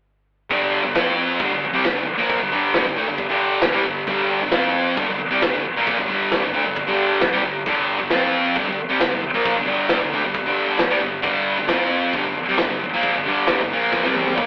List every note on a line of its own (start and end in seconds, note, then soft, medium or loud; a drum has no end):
0.50 0.83 G2 loud
0.50 0.83 D3 loud
0.50 0.84 G3 loud
0.50 kick loud
0.50 crash medium
0.84 0.95 G2 medium
0.84 0.95 D3 medium
0.95 1.39 F3 medium
0.95 1.39 C4 loud
0.95 1.40 F4 loud
0.95 kick loud
0.95 snare medium
0.95 crash medium
1.39 1.51 G2 loud
1.39 1.51 D3 loud
1.39 kick loud
1.39 crash medium
1.53 1.63 G2 medium
1.53 1.63 D3 medium
1.65 muted distorted electric guitar stroke medium
1.74 1.84 C3 medium
1.74 1.84 G3 loud
1.85 1.94 G2 medium
1.85 1.94 D3 medium
1.85 kick loud
1.85 snare loud
1.85 crash medium
1.95 2.05 G2 medium
1.95 2.06 D3 medium
2.07 muted distorted electric guitar stroke medium
2.18 2.39 A#2 medium
2.18 2.40 F3 loud
2.18 2.40 A#3 loud
2.30 kick loud
2.30 crash medium
2.40 2.50 G2 medium
2.40 2.51 D3 medium
2.51 2.84 G2 medium
2.51 2.85 D3 loud
2.51 2.85 G3 loud
2.74 kick loud
2.74 snare loud
2.74 crash medium
2.85 2.96 G2 medium
2.85 2.95 D3 medium
2.96 3.06 D3 medium
2.96 3.07 A3 medium
3.07 3.25 G2 medium
3.07 3.25 D3 medium
3.18 kick loud
3.18 crash medium
3.29 3.62 G2 medium
3.29 3.62 D3 loud
3.29 3.63 G3 loud
3.62 muted distorted electric guitar stroke medium
3.62 kick loud
3.62 snare loud
3.62 crash medium
3.72 3.83 C3 medium
3.72 3.84 G3 loud
3.85 4.03 G2 medium
3.85 4.03 D3 medium
4.07 4.41 G2 loud
4.07 4.41 D3 loud
4.07 4.41 G3 loud
4.07 kick loud
4.07 crash medium
4.42 4.53 G2 medium
4.42 4.51 D3 medium
4.52 4.96 F3 loud
4.52 4.97 C4 loud
4.52 4.97 F4 loud
4.52 kick loud
4.52 snare loud
4.52 crash medium
4.96 5.07 G2 loud
4.96 5.08 D3 loud
4.96 kick loud
4.96 crash medium
5.09 5.19 G2 medium
5.09 5.20 D3 medium
5.20 muted distorted electric guitar stroke medium
5.31 5.41 C3 medium
5.31 5.42 G3 medium
5.42 5.52 G2 medium
5.42 5.52 D3 medium
5.42 kick loud
5.42 snare loud
5.42 crash medium
5.53 5.63 G2 medium
5.53 5.64 D3 medium
5.64 muted distorted electric guitar stroke medium
5.76 5.98 A#2 medium
5.76 5.98 F3 medium
5.76 5.98 A#3 loud
5.87 kick loud
5.87 crash medium
5.99 6.07 G2 medium
5.99 6.09 D3 medium
6.08 6.41 G2 medium
6.08 6.42 D3 loud
6.08 6.42 G3 loud
6.32 kick loud
6.32 snare loud
6.32 crash medium
6.43 6.54 G2 medium
6.43 6.52 D3 medium
6.53 6.64 D3 medium
6.53 6.65 A3 medium
6.66 6.83 G2 medium
6.66 6.84 D3 medium
6.76 kick loud
6.76 crash medium
6.87 7.20 G2 medium
6.87 7.20 D3 medium
6.87 7.20 G3 loud
7.21 muted distorted electric guitar stroke medium
7.21 kick loud
7.21 snare loud
7.21 crash medium
7.32 7.43 C3 medium
7.32 7.43 G3 loud
7.43 7.61 G2 medium
7.43 7.61 D3 medium
7.66 7.98 G2 loud
7.66 7.98 D3 loud
7.66 7.99 G3 loud
7.66 kick loud
7.66 crash medium
7.99 8.10 G2 medium
7.99 8.10 D3 medium
8.10 8.55 F3 medium
8.10 8.55 C4 loud
8.10 8.55 F4 medium
8.10 kick loud
8.10 snare medium
8.10 crash medium
8.56 8.66 G2 medium
8.56 8.66 D3 loud
8.56 kick loud
8.56 crash medium
8.69 8.77 G2 medium
8.69 8.79 D3 medium
8.78 muted distorted electric guitar stroke medium
8.89 8.99 C3 medium
8.89 9.00 G3 loud
8.99 9.10 G2 medium
8.99 9.10 D3 medium
8.99 kick loud
8.99 snare loud
8.99 crash medium
9.12 9.21 G2 medium
9.12 9.23 D3 medium
9.23 muted distorted electric guitar stroke medium
9.34 9.55 A#2 medium
9.34 9.55 F3 loud
9.34 9.56 A#3 loud
9.45 kick loud
9.45 crash medium
9.57 9.65 G2 medium
9.57 9.65 D3 medium
9.66 9.99 G2 medium
9.66 9.99 D3 loud
9.66 10.00 G3 loud
9.89 kick loud
9.89 snare loud
9.89 crash medium
10.00 10.12 G2 medium
10.00 10.12 D3 medium
10.13 10.23 D3 medium
10.13 10.23 A3 medium
10.24 10.42 G2 medium
10.24 10.42 D3 medium
10.34 kick loud
10.34 crash medium
10.46 10.77 G2 medium
10.46 10.79 D3 loud
10.46 10.79 G3 medium
10.79 muted distorted electric guitar stroke medium
10.79 kick loud
10.79 snare loud
10.79 crash medium
10.90 11.00 C3 loud
10.90 11.01 G3 loud
11.01 11.19 G2 medium
11.01 11.19 D3 medium
11.22 11.56 G2 loud
11.22 11.56 D3 loud
11.22 11.56 G3 loud
11.22 kick loud
11.22 crash medium
11.58 11.69 G2 medium
11.58 11.67 D3 medium
11.68 12.12 F3 medium
11.68 12.13 C4 medium
11.68 12.13 F4 loud
11.68 kick loud
11.68 snare loud
11.68 crash medium
12.13 12.24 G2 loud
12.13 12.25 D3 loud
12.13 kick loud
12.13 crash medium
12.25 12.36 G2 medium
12.25 12.36 D3 medium
12.37 muted distorted electric guitar stroke medium
12.49 12.58 C3 medium
12.49 12.59 G3 loud
12.58 12.69 G2 medium
12.58 12.70 D3 medium
12.58 kick loud
12.58 snare loud
12.58 crash medium
12.70 12.81 G2 medium
12.70 12.81 D3 medium
12.84 muted distorted electric guitar stroke medium
12.93 13.14 A#2 medium
12.93 13.14 F3 loud
12.93 13.15 A#3 medium
13.03 kick loud
13.03 crash medium
13.14 13.25 G2 medium
13.14 13.25 D3 medium
13.26 13.58 G2 loud
13.26 13.59 D3 loud
13.26 13.59 G3 loud
13.47 kick loud
13.47 snare loud
13.47 crash medium
13.61 13.71 G2 medium
13.61 13.71 D3 medium
13.72 14.03 A#2 medium
13.72 14.04 F3 loud
13.72 14.05 A#3 medium
13.92 kick loud
13.92 snare medium
14.03 14.36 C3 medium
14.03 14.37 G3 loud
14.03 14.37 C4 loud
14.03 snare medium
14.14 high tom medium
14.26 high tom medium
14.36 14.46 A#2 loud
14.36 14.46 F3 loud
14.36 14.46 A#3 loud
14.36 kick loud
14.36 mid tom medium